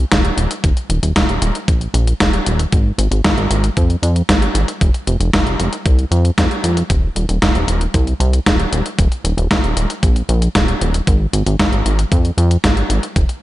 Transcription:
0.12 D#1, kick, snare, closed hi-hat
0.25 closed hi-hat
0.37 D#1, closed hi-hat
0.51 closed hi-hat
0.64 D#1, kick, closed hi-hat
0.77 closed hi-hat
0.90 D#1, closed hi-hat
1.03 D#1, closed hi-hat
1.16 D#1, kick, snare, closed hi-hat
1.29 D#1, closed hi-hat
1.42 D#1, closed hi-hat
1.55 closed hi-hat
1.68 A#1, kick, closed hi-hat
1.81 closed hi-hat
1.94 A#1, closed hi-hat
2.07 closed hi-hat
2.20 D#1, kick, snare, closed hi-hat
2.33 closed hi-hat
2.46 D#1, closed hi-hat
2.59 closed hi-hat
2.72 G#1, kick, closed hi-hat
2.98 G#1, closed hi-hat
3.11 G#1, closed hi-hat
3.24 G#1, kick, snare, closed hi-hat
3.37 G#1, closed hi-hat
3.50 G#1, closed hi-hat
3.64 closed hi-hat
3.77 F2, kick, closed hi-hat
3.90 closed hi-hat
4.03 F2, closed hi-hat
4.16 closed hi-hat
4.29 G#1, kick, snare, closed hi-hat
4.42 closed hi-hat
4.55 G#1, closed hi-hat
4.68 closed hi-hat
4.81 F1, kick, closed hi-hat
4.94 closed hi-hat
5.07 F1, closed hi-hat
5.20 F1, closed hi-hat
5.33 F1, kick, snare, closed hi-hat
5.46 F1, closed hi-hat
5.59 F1, closed hi-hat
5.73 closed hi-hat
5.86 C2, kick, closed hi-hat
5.99 closed hi-hat
6.11 F2, closed hi-hat
6.25 closed hi-hat
6.38 F2, kick, snare, closed hi-hat
6.51 closed hi-hat
6.63 F2, closed hi-hat
6.77 closed hi-hat
6.90 D#1, kick, closed hi-hat
7.16 D#1, closed hi-hat
7.29 D#1, closed hi-hat
7.42 D#1, kick, snare, closed hi-hat
7.55 D#1, closed hi-hat
7.68 D#1, closed hi-hat
7.81 closed hi-hat
7.94 C2, kick, closed hi-hat
8.07 closed hi-hat
8.20 C2, closed hi-hat
8.33 closed hi-hat
8.46 D#1, kick, snare, closed hi-hat
8.60 closed hi-hat
8.72 D#1, closed hi-hat
8.86 closed hi-hat
8.99 D#1, kick, closed hi-hat
9.12 closed hi-hat
9.24 D#1, closed hi-hat
9.37 D#1, closed hi-hat
9.51 D#1, kick, snare, closed hi-hat
9.64 D#1, closed hi-hat
9.76 D#1, closed hi-hat
9.90 closed hi-hat
10.03 A#1, kick, closed hi-hat
10.16 closed hi-hat
10.29 A#1, closed hi-hat
10.42 closed hi-hat
10.55 D#1, kick, snare, closed hi-hat
10.68 closed hi-hat
10.81 D#1, closed hi-hat
10.94 closed hi-hat
11.07 G#1, kick, closed hi-hat
11.33 G#1, closed hi-hat
11.46 G#1, closed hi-hat
11.59 G#1, kick, snare, closed hi-hat
11.72 G#1, closed hi-hat
11.85 G#1, closed hi-hat
11.99 closed hi-hat
12.12 F2, kick, closed hi-hat
12.25 closed hi-hat
12.38 F2, closed hi-hat
12.51 closed hi-hat
12.64 G#1, kick, snare, closed hi-hat
12.77 closed hi-hat
12.90 G#1, closed hi-hat
13.03 closed hi-hat
13.16 F1, kick, closed hi-hat
13.29 closed hi-hat

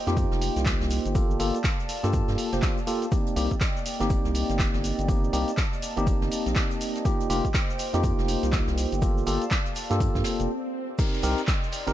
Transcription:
Already playing: A#3 C5 D#5 G5
0.07 F2 A#3 D#4 F4 G4, snare, closed hi-hat, cabasa
0.17 kick, closed hi-hat, cabasa, shaker
0.31 F1, snare, cabasa
0.41 open hi-hat, cabasa, shaker
0.56 C2, snare, closed hi-hat, cabasa
0.66 kick, snare, clap, closed hi-hat, cabasa, shaker
0.81 C2, snare, cabasa
0.90 open hi-hat, cabasa, shaker
1.05 G1, closed hi-hat, cabasa
1.15 A#3 F4 G4 A4 D5 F5 A5, kick, closed hi-hat, cabasa, shaker
1.31 cabasa
1.39 G1 A#3 F4 G4 A4, open hi-hat, cabasa, shaker
1.55 closed hi-hat, cabasa
1.64 kick, snare, clap, closed hi-hat, cabasa, shaker
1.80 closed hi-hat, cabasa
1.89 open hi-hat, cabasa, shaker
2.03 G2 A#3 F4 G4 A4, snare, closed hi-hat, cabasa
2.13 kick, closed hi-hat, cabasa, shaker
2.28 G2, snare, cabasa
2.38 open hi-hat, cabasa, shaker
2.52 F1 A#3 F4 G4 C5, snare, closed hi-hat, cabasa
2.62 kick, snare, clap, closed hi-hat, cabasa, shaker
2.77 closed hi-hat, cabasa
2.87 A#3 F4 G4 A4, open hi-hat, cabasa, shaker
3.02 closed hi-hat, cabasa
3.11 A#3 C4 D#4 G4 D#5 G5, kick, closed hi-hat, cabasa, shaker
3.26 closed hi-hat, cabasa
3.36 C2 A#3 C4 D#4 G4, open hi-hat, cabasa, shaker
3.51 kick, closed hi-hat, cabasa
3.61 kick, snare, clap, closed hi-hat, cabasa, shaker
3.77 cabasa
3.86 open hi-hat, cabasa, shaker
4.00 G1 A#3 C4 D#4 G4, snare, closed hi-hat, cabasa
4.10 kick, closed hi-hat, cabasa, shaker
4.25 C2, snare, cabasa
4.35 open hi-hat, cabasa, shaker
4.49 G1, snare, closed hi-hat, cabasa
4.59 kick, snare, clap, closed hi-hat, cabasa, shaker
4.74 G1, snare, cabasa
4.84 open hi-hat, cabasa, shaker
4.99 G1, closed hi-hat, cabasa
5.08 A#3 C4 D#4 G4 A5, kick, closed hi-hat, cabasa, shaker
5.24 cabasa
5.33 C2 A#3 C4 D#4 G4, open hi-hat, cabasa, shaker
5.48 closed hi-hat, cabasa
5.57 kick, snare, clap, closed hi-hat, cabasa, shaker
5.73 closed hi-hat, cabasa
5.82 open hi-hat, cabasa, shaker
5.97 G1 A#3 C4 D#4 G4, closed hi-hat, cabasa
6.07 kick, closed hi-hat, cabasa, shaker
6.22 G1, snare, cabasa
6.31 open hi-hat, cabasa, shaker
6.46 A#1, snare, closed hi-hat, cabasa
6.56 kick, snare, clap, closed hi-hat, cabasa, shaker
6.70 closed hi-hat, cabasa
6.81 open hi-hat, cabasa, shaker
6.96 snare, closed hi-hat, cabasa
7.05 A#3 D#4 F4 G4 C5 G5, kick, closed hi-hat, cabasa, shaker
7.20 closed hi-hat, cabasa
7.30 F1 A#3 D#4 F4 G4, open hi-hat, cabasa, shaker
7.45 kick, closed hi-hat, cabasa
7.54 kick, snare, clap, closed hi-hat, cabasa, shaker
7.70 cabasa
7.79 open hi-hat, cabasa, shaker
7.93 F2 A#3 D#4 F4 G4, snare, closed hi-hat, cabasa
8.03 kick, closed hi-hat, cabasa, shaker
8.19 F1, snare, cabasa
8.28 open hi-hat, cabasa, shaker
8.43 C2, snare, closed hi-hat, cabasa
8.52 kick, snare, clap, closed hi-hat, cabasa, shaker
8.68 C2, snare, cabasa
8.78 open hi-hat, cabasa, shaker
8.92 G1, closed hi-hat, cabasa
9.02 A#3 F4 G4 A4 D5 F5 A5, kick, closed hi-hat, cabasa, shaker
9.18 cabasa
9.26 G1 A#3 F4 G4 A4, open hi-hat, cabasa, shaker
9.42 closed hi-hat, cabasa
9.51 kick, snare, clap, closed hi-hat, cabasa, shaker
9.65 closed hi-hat, cabasa
9.75 open hi-hat, cabasa, shaker
9.90 G2 A#3 F4 G4 A4, snare, closed hi-hat, cabasa
10.00 kick, closed hi-hat, swell, cabasa, shaker
10.15 G2, kick, snare, cabasa
10.24 snare, open hi-hat, cabasa, shaker
10.40 F1, closed hi-hat, cabasa
10.98 C4 D#4 G4 A#4 D5 D#5 G5 C6, kick, closed hi-hat, crash, downlifter, cabasa, shaker
11.13 closed hi-hat, cabasa
11.22 C2 C4 D#4 G4 A#4, open hi-hat, cabasa, shaker
11.38 closed hi-hat, cabasa
11.47 kick, snare, clap, closed hi-hat, cabasa, shaker
11.63 cabasa
11.72 open hi-hat, cabasa, shaker
11.87 G1 C4 D#4 G4 A#4, snare, closed hi-hat, cabasa

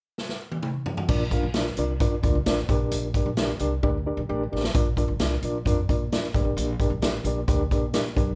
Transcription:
0.18 snare
0.29 snare
0.52 high tom
0.63 mid tom
0.86 floor tom
0.97 floor tom
1.08 A#1 A#2 D4 F4 A#4 D5, kick, crash
1.31 D4 F4 A#4 F5, kick, closed hi-hat
1.43 A#1
1.54 D4 F4 A#4 D5, snare, closed hi-hat
1.66 snare
1.77 C2 D4 F4 A#4 D5, closed hi-hat
2.00 D4 F4 A#4 D5, kick, closed hi-hat
2.23 D2 D4 F4 A#4 D5, kick, closed hi-hat
2.35 C2
2.46 A1 D4 F4 A#4 D5, snare, closed hi-hat
2.58 snare
2.69 A#1 A#2 D4 G4 A#4 D5, kick, closed hi-hat
2.91 A#1, closed hi-hat
3.14 D4 G4 A#4 D5, kick, closed hi-hat
3.26 A#1
3.37 D4 G4 A#4 D5, snare, closed hi-hat
3.59 C2 D4 G4 A#4 D5, closed hi-hat
3.83 D2 D4 G4 A#4 D5, kick
4.06 D4 G4 A#4 D5
4.17 A#1
4.29 A1 D4 G4 A#4 D5
4.52 A1 D4 G4 A#4 D5
4.64 snare
4.75 A#1 A#2 D4 F4 A#4 D5, kick, closed hi-hat
4.97 D4 F4 A#4 D5, kick, closed hi-hat
5.08 A#1
5.19 C2 D4 F4 A#4 D5, snare, closed hi-hat
5.42 A#1 D4 F4 A#4 D5, closed hi-hat
5.65 F2 D4 F4 A#4 D5, kick, closed hi-hat
5.89 A#2 D4 F4 A#4 D5, kick, closed hi-hat
6.12 D4 F4 A#4 D5, snare, closed hi-hat
6.23 snare
6.34 A#1 A#2 D4 G4 A#4 D5, kick, closed hi-hat
6.45 A1
6.57 A#1, closed hi-hat
6.80 D4 G4 A#4 D5, kick, closed hi-hat
6.90 A#1
7.02 A1 D4 G4 A#4 D5, snare, closed hi-hat
7.24 A#1 D4 G4 A#4 D5, closed hi-hat
7.48 D2 D4 G4 A#4 D5, kick, closed hi-hat
7.71 A#2 D4 G4 A#4 D5, kick, closed hi-hat
7.93 D4 G4 A#4 D5, snare, closed hi-hat
8.16 B1 D4 G4 A#4 D5, kick, closed hi-hat

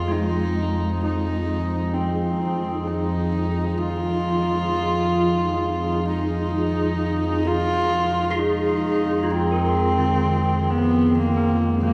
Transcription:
Already playing: F2 F3 D#4 F4 G#4 D#5
0.08 G#3 D#4
1.04 D#4
1.94 C4
2.87 D#4
3.78 F4
6.08 D#4
7.46 F2 G#3 F4 G#4, tam-tam
8.30 F4 G#4
8.39 D#4
9.23 F4
9.31 C4
9.43 D#5
9.52 A#4
9.98 D#3
10.71 B3
11.18 A#3
11.37 C4
11.83 C3 A#3

